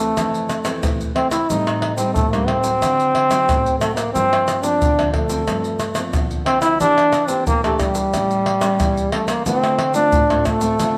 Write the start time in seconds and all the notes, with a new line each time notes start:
Already playing: C3 E3 A3 C4
0.17 F2 E3 A3 C4, pandeiro, tamborim, shaker, surdo
0.34 pandeiro, shaker
0.49 pandeiro, tamborim, shaker
0.65 E3 A3 C4, pandeiro, tamborim, shaker
0.83 C3, pandeiro, tamborim, shaker, surdo
1.01 pandeiro, shaker
1.15 E3 A3 C4, pandeiro, tamborim
1.31 E4, pandeiro, tamborim, shaker
1.50 A2 G3 C4 D#4, pandeiro, shaker, surdo
1.67 pandeiro, tamborim, shaker
1.82 pandeiro, tamborim
1.96 G3 C4 D#4, pandeiro, shaker
2.14 A2 A3, pandeiro, shaker, surdo
2.32 G3 A#3 C4 D#4, pandeiro, tamborim, shaker
2.47 C4, pandeiro, tamborim
2.63 F#3 C4 D#4, pandeiro, shaker
2.82 D3, pandeiro, tamborim, shaker, surdo
3.00 pandeiro, shaker
3.15 pandeiro, tamborim
3.31 F#3 C4 D#4, pandeiro, tamborim, shaker
3.49 A2, pandeiro, tamborim, shaker, surdo
3.66 pandeiro, shaker
3.79 F#3 A3 C4 D#4, pandeiro, tamborim, shaker
3.95 A#3, pandeiro, tamborim, shaker
4.13 G2 F3 A#3 C4, pandeiro, shaker, surdo
4.33 pandeiro, tamborim, shaker
4.48 pandeiro, tamborim, shaker
4.63 F3 A#3 C4 D4, pandeiro, shaker
4.81 D3, pandeiro, shaker, surdo
4.98 F3 A#3 C4, pandeiro, tamborim, shaker
5.13 A3, pandeiro, tamborim, surdo
5.29 F3 A#3 C4, pandeiro, shaker
5.47 G2 F3 C4, pandeiro, tamborim, shaker, surdo
5.64 pandeiro, shaker
5.80 pandeiro, tamborim, shaker
5.95 F3 A#3 C4, pandeiro, tamborim, shaker
6.13 D3, pandeiro, tamborim, shaker, surdo
6.31 pandeiro, shaker
6.46 F3 A#3 C4, pandeiro, tamborim
6.61 E4, pandeiro, tamborim, shaker
6.80 E3 A#3 D4 G4, pandeiro, shaker, surdo
6.98 pandeiro, tamborim, shaker
7.13 pandeiro, tamborim, shaker
7.28 A#3 C4 D4 G4, pandeiro, shaker
7.47 E3 A#3, pandeiro, shaker, surdo
7.64 A3 A#3 D4 G4, pandeiro, tamborim, shaker
7.79 G3, pandeiro, tamborim, shaker, surdo
7.95 pandeiro, shaker
8.14 A2 G3 A#3 C#4, pandeiro, tamborim, shaker, surdo
8.31 pandeiro, shaker
8.46 pandeiro, tamborim
8.61 G3 A#3 C#4, pandeiro, tamborim, shaker
8.80 E3, pandeiro, tamborim, shaker, surdo
8.97 pandeiro, shaker
9.12 G3 A3 A#3 C#4, pandeiro, tamborim
9.28 A#3, pandeiro, tamborim, shaker
9.46 D3 A3 C4 F4, pandeiro, shaker, surdo
9.63 pandeiro, tamborim, shaker
9.79 pandeiro, tamborim
9.94 A3 C4 D4 F4, pandeiro, shaker
10.12 A2, pandeiro, shaker, surdo
10.30 A3 C4 F4, pandeiro, tamborim, shaker
10.45 A3, pandeiro, tamborim, shaker, surdo
10.61 A3 C4 F4, pandeiro, shaker
10.79 D3 A3 C4 F4, pandeiro, tamborim, shaker, surdo